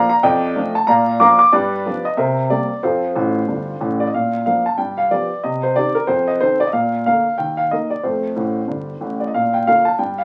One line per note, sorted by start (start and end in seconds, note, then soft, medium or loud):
0.10 0.23 A#5 medium
0.23 0.51 F2 medium
0.23 0.72 D5 medium
0.23 0.72 D#5 medium
0.23 0.75 G5 medium
0.56 0.74 F3 soft
0.56 0.74 A3 medium
0.56 0.74 D4 medium
0.75 0.88 A5 medium
0.87 1.16 A#2 medium
0.87 1.19 D5 medium
0.87 1.19 F5 medium
0.87 1.20 A#5 medium
1.20 1.38 F3 medium
1.20 1.38 A#3 medium
1.20 1.39 D4 medium
1.20 1.39 F5 medium
1.20 1.39 A#5 medium
1.20 1.37 D6 medium
1.39 1.53 D6 medium
1.53 1.81 G2 medium
1.53 2.02 G4 medium
1.53 2.02 B4 medium
1.53 2.05 D5 medium
1.86 2.04 F3 soft
1.86 2.04 B3 soft
1.86 2.04 D4 medium
2.05 2.18 D#5 medium
2.17 2.45 C3 medium
2.17 2.48 A#4 medium
2.17 2.48 C5 medium
2.17 2.50 E5 medium
2.50 2.68 G3 soft
2.50 2.69 A#3 soft
2.50 2.69 C4 soft
2.50 2.83 D5 medium
2.83 3.11 F2 medium
2.83 3.77 F4 soft
2.83 3.77 A4 soft
2.83 3.80 C5 medium
3.16 3.40 A1 medium
3.16 3.40 A2 medium
3.48 3.73 G1 medium
3.48 3.72 G2 medium
3.81 4.05 A1 medium
3.81 4.05 A2 medium
4.00 4.06 D5 medium
4.08 4.13 D#5 medium
4.14 4.41 A#2 medium
4.14 4.44 F5 medium
4.46 4.64 F3 soft
4.46 4.64 A#3 soft
4.46 4.65 D4 soft
4.46 4.65 F5 medium
4.66 4.78 A5 medium
4.78 5.06 G2 medium
4.78 4.97 G5 medium
4.98 5.10 F5 medium
5.11 5.29 F3 soft
5.11 5.29 B3 soft
5.11 5.29 G4 soft
5.11 5.43 D5 medium
5.44 5.71 C3 medium
5.44 5.63 D#5 medium
5.63 5.76 C5 medium
5.76 5.94 D#3 soft
5.76 5.94 C4 soft
5.76 5.94 G4 soft
5.76 5.95 D5 medium
5.95 6.08 A#4 medium
6.07 6.36 F2 medium
6.07 6.27 C5 medium
6.28 6.41 D#5 medium
6.41 6.59 D#3 soft
6.41 6.59 C4 soft
6.41 6.59 A4 soft
6.41 6.60 C5 medium
6.60 6.67 D5 medium
6.67 6.73 D#5 medium
6.73 7.01 A#2 medium
6.73 7.05 F5 medium
7.06 7.24 D3 soft
7.06 7.24 A#3 soft
7.06 7.25 A#4 soft
7.06 7.39 F5 medium
7.38 7.66 D#2 soft
7.38 7.58 G5 medium
7.57 7.71 F5 medium
7.71 7.89 D#3 soft
7.71 7.90 A#3 soft
7.71 7.90 A#4 soft
7.71 7.91 D#5 medium
7.90 8.03 D5 medium
8.03 8.30 F2 soft
8.03 8.31 A3 medium
8.03 9.01 C5 soft
8.36 8.61 A1 medium
8.36 8.61 A2 medium
8.68 8.93 G1 soft
8.68 8.93 G2 soft
9.01 9.25 A1 medium
9.01 9.25 A2 soft
9.20 9.27 D5 soft
9.27 9.34 D#5 soft
9.34 9.62 A#2 medium
9.34 9.54 F5 medium
9.54 9.67 G5 medium
9.67 9.85 D3 soft
9.67 9.85 A#3 soft
9.67 9.86 F4 soft
9.67 9.86 F5 medium
9.85 9.99 A5 medium
9.99 10.24 G2 soft
9.99 10.18 G5 medium
10.18 10.24 F5 medium